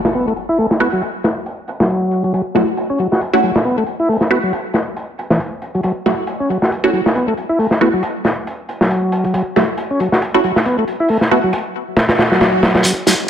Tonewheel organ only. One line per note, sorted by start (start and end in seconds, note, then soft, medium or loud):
0.15 0.26 B3 loud
0.27 0.33 A3 medium
0.49 0.58 E4 loud
0.59 0.66 A3 loud
0.80 0.88 B3 loud
0.93 1.02 F#3 medium
1.80 2.23 F#3 medium
2.24 2.33 F#3 medium
2.34 2.42 F#3 medium
2.56 2.63 F#3 medium
2.90 2.99 C#4 medium
2.99 3.07 F#3 medium
3.12 3.21 F#4 medium
3.34 3.40 C#4 medium
3.43 3.51 F#3 medium
3.65 3.76 B3 loud
3.77 3.83 A3 medium
4.00 4.08 E4 medium
4.09 4.17 A3 medium
4.31 4.39 B3 medium
4.43 4.52 F#3 medium
5.31 5.39 E3 medium
5.75 5.81 F#3 medium
5.84 5.92 F#3 medium
6.06 6.14 F#3 medium
6.40 6.49 C#4 medium
6.50 6.58 F#3 medium
6.62 6.71 F#4 medium
6.84 6.90 C#4 medium
6.93 7.01 F#3 medium
7.15 7.26 B3 medium
7.28 7.34 A3 medium
7.49 7.59 E4 medium
7.59 7.67 A3 loud
7.81 7.89 B3 loud
7.93 8.03 F#3 medium
8.81 9.24 F#3 medium
9.25 9.33 F#3 medium
9.34 9.42 F#3 medium
9.56 9.64 F#3 medium
9.91 10.00 C#4 medium
10.00 10.08 F#3 medium
10.13 10.22 F#4 medium
10.34 10.40 C#4 medium
10.44 10.52 F#3 medium
10.66 10.77 B3 loud
10.78 10.84 A3 medium
11.00 11.09 E4 loud
11.10 11.17 A3 loud
11.31 11.39 B3 loud
11.44 11.53 F#3 medium
12.31 12.74 F#3 medium
12.75 12.83 F#3 medium
12.85 12.93 F#3 medium
13.06 13.14 F#3 medium